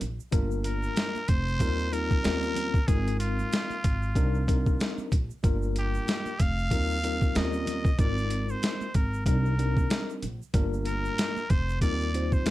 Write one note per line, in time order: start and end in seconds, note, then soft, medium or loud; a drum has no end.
0.01 0.17 A#1 medium
0.01 closed hi-hat medium
0.01 low conga medium
0.01 shaker soft
0.20 shaker soft
0.31 0.86 G1 medium
0.31 1.20 G3 medium
0.31 1.20 A#3 medium
0.31 1.20 D4 medium
0.31 1.21 F4 medium
0.31 1.21 A#4 loud
0.31 kick loud
0.31 closed hi-hat medium
0.31 shaker medium
0.51 shaker soft
0.64 1.30 A#4 loud
0.64 closed hi-hat medium
0.64 shaker soft
0.83 shaker soft
0.96 snare loud
0.96 closed hi-hat medium
0.96 high conga soft
0.96 shaker medium
1.15 high conga medium
1.15 shaker soft
1.28 1.56 F1 medium
1.28 1.94 C5 loud
1.28 kick loud
1.28 closed hi-hat medium
1.28 low conga medium
1.28 shaker soft
1.48 shaker soft
1.60 2.14 D#2 loud
1.60 1.87 G3 medium
1.60 1.87 C4 medium
1.60 1.87 D#4 medium
1.60 1.87 F4 medium
1.60 1.88 A#4 medium
1.60 kick medium
1.60 closed hi-hat medium
1.60 shaker medium
1.79 shaker soft
1.91 2.22 G3 medium
1.91 2.23 C4 medium
1.91 2.24 D#4 medium
1.91 2.23 F4 medium
1.91 2.89 A#4 loud
1.91 2.24 A#4 medium
1.91 closed hi-hat medium
1.91 shaker soft
2.10 kick medium
2.10 high conga medium
2.10 shaker soft
2.24 2.78 D#2 medium
2.24 2.77 G3 medium
2.24 2.77 C4 medium
2.24 2.78 C#4 medium
2.24 2.78 F4 medium
2.24 2.78 A#4 medium
2.24 snare loud
2.24 closed hi-hat medium
2.24 shaker medium
2.43 shaker soft
2.56 closed hi-hat medium
2.56 low conga medium
2.56 shaker soft
2.74 kick medium
2.74 shaker soft
2.87 3.42 G#1 medium
2.87 3.76 G#3 medium
2.87 3.76 C4 medium
2.87 3.76 D#4 medium
2.87 3.76 F4 medium
2.87 3.19 G#4 medium
2.87 3.76 A#4 medium
2.87 kick loud
2.87 closed hi-hat medium
2.87 shaker medium
3.07 closed hi-hat soft
3.07 shaker soft
3.20 5.07 F4 medium
3.20 closed hi-hat medium
3.20 shaker soft
3.39 high conga soft
3.39 shaker soft
3.52 snare loud
3.52 closed hi-hat medium
3.52 high conga soft
3.52 shaker medium
3.70 high conga medium
3.70 shaker soft
3.84 4.11 G#1 medium
3.84 kick loud
3.84 closed hi-hat medium
3.84 low conga medium
3.84 shaker soft
4.02 shaker soft
4.15 4.69 C2 medium
4.15 4.42 G3 medium
4.15 4.42 C4 medium
4.15 4.42 D4 medium
4.15 4.43 D#4 medium
4.15 4.43 A#4 medium
4.15 kick medium
4.15 closed hi-hat medium
4.15 shaker medium
4.34 shaker soft
4.47 5.12 G3 medium
4.47 5.13 C4 medium
4.47 5.13 D4 medium
4.47 5.13 D#4 medium
4.47 5.13 A#4 medium
4.47 kick medium
4.47 closed hi-hat medium
4.47 shaker soft
4.66 kick medium
4.66 high conga medium
4.66 shaker soft
4.80 snare loud
4.80 closed hi-hat medium
4.80 shaker medium
4.98 high conga medium
4.98 shaker soft
5.12 5.27 A#1 medium
5.12 kick medium
5.12 closed hi-hat medium
5.12 low conga medium
5.12 shaker soft
5.30 shaker soft
5.43 5.97 G1 medium
5.43 6.31 G3 medium
5.43 6.31 A#3 medium
5.43 6.32 D4 medium
5.43 6.32 F4 medium
5.43 6.32 A#4 medium
5.43 kick loud
5.43 closed hi-hat medium
5.43 shaker medium
5.62 shaker soft
5.76 6.42 G4 medium
5.76 closed hi-hat medium
5.76 shaker soft
5.94 shaker soft
6.08 snare loud
6.08 closed hi-hat medium
6.08 high conga soft
6.08 shaker medium
6.26 high conga medium
6.26 shaker soft
6.40 6.66 F1 medium
6.40 7.38 F5 loud
6.40 kick medium
6.40 closed hi-hat medium
6.40 low conga medium
6.40 shaker soft
6.58 shaker soft
6.71 7.25 D#2 loud
6.71 6.98 G3 medium
6.71 6.98 C4 medium
6.71 6.98 D#4 medium
6.71 6.98 F4 medium
6.71 6.98 A#4 medium
6.71 kick medium
6.71 closed hi-hat medium
6.71 shaker medium
6.90 shaker soft
7.03 7.34 G3 medium
7.03 7.34 C4 medium
7.03 7.36 D#4 medium
7.03 7.35 F4 medium
7.03 7.36 A#4 medium
7.03 closed hi-hat medium
7.03 shaker soft
7.22 kick medium
7.22 high conga medium
7.22 shaker soft
7.35 7.89 D#2 medium
7.35 7.88 G3 medium
7.35 7.89 C4 medium
7.35 7.89 C#4 medium
7.35 7.89 F4 medium
7.35 7.89 A#4 medium
7.35 7.99 D#5 loud
7.35 snare loud
7.35 closed hi-hat medium
7.35 shaker medium
7.53 shaker soft
7.67 closed hi-hat medium
7.67 low conga medium
7.67 shaker soft
7.85 kick loud
7.85 shaker soft
7.98 8.52 G#1 medium
7.98 8.86 G#3 medium
7.98 8.87 C4 medium
7.98 8.87 D#4 medium
7.98 8.87 F4 medium
7.98 8.87 A#4 medium
7.98 8.52 D5 loud
7.98 kick loud
7.98 closed hi-hat medium
7.98 shaker medium
8.18 shaker soft
8.31 closed hi-hat medium
8.31 shaker soft
8.49 8.97 C5 medium
8.49 shaker soft
8.63 snare loud
8.63 closed hi-hat medium
8.63 high conga soft
8.63 shaker medium
8.81 high conga medium
8.81 shaker soft
8.94 9.22 G#1 medium
8.94 9.26 A#4 medium
8.94 kick medium
8.94 closed hi-hat medium
8.94 low conga medium
8.94 shaker soft
9.14 shaker soft
9.26 9.80 C2 loud
9.26 9.53 G3 medium
9.26 9.53 C4 medium
9.26 9.53 D4 medium
9.26 9.53 D#4 medium
9.26 10.18 A#4 medium
9.26 9.54 A#4 medium
9.26 kick medium
9.26 closed hi-hat medium
9.26 shaker medium
9.45 shaker soft
9.58 10.23 G3 medium
9.58 10.23 C4 medium
9.58 10.24 D4 medium
9.58 10.24 D#4 medium
9.58 10.24 A#4 medium
9.58 closed hi-hat medium
9.58 shaker soft
9.77 kick medium
9.77 high conga medium
9.77 shaker soft
9.90 snare loud
9.90 closed hi-hat medium
9.90 shaker medium
10.10 shaker soft
10.22 10.38 A#1 medium
10.22 closed hi-hat medium
10.22 low conga medium
10.22 shaker soft
10.42 shaker soft
10.54 11.08 G1 loud
10.54 11.42 G3 medium
10.54 11.42 A#3 medium
10.54 11.42 D4 medium
10.54 11.42 F4 medium
10.54 11.42 A#4 loud
10.54 kick loud
10.54 closed hi-hat medium
10.54 shaker medium
10.73 shaker soft
10.85 11.52 A#4 loud
10.85 closed hi-hat medium
10.85 shaker soft
11.05 shaker soft
11.18 snare loud
11.18 closed hi-hat medium
11.18 high conga soft
11.18 shaker medium
11.37 high conga medium
11.37 shaker soft
11.50 11.77 F1 medium
11.50 11.81 C5 loud
11.50 kick loud
11.50 closed hi-hat medium
11.50 low conga medium
11.50 shaker soft
11.69 shaker soft
11.81 12.35 D#2 medium
11.81 12.08 G3 medium
11.81 12.09 C4 medium
11.81 12.09 D#4 medium
11.81 12.09 F4 medium
11.81 12.09 A#4 medium
11.81 12.34 D5 loud
11.81 kick medium
11.81 closed hi-hat medium
11.81 shaker medium
12.00 shaker soft
12.14 12.44 G3 medium
12.14 12.45 C4 medium
12.14 12.46 D#4 medium
12.14 12.45 F4 medium
12.14 12.46 C5 medium
12.14 closed hi-hat medium
12.14 shaker soft
12.32 12.50 C5 medium
12.32 kick medium
12.32 high conga medium
12.32 shaker soft
12.46 12.50 D#2 medium
12.46 12.50 G3 medium
12.46 12.50 C4 medium
12.46 12.50 C#4 medium
12.46 12.50 F4 medium
12.46 12.50 A#4 medium
12.46 snare loud
12.46 closed hi-hat medium
12.46 shaker medium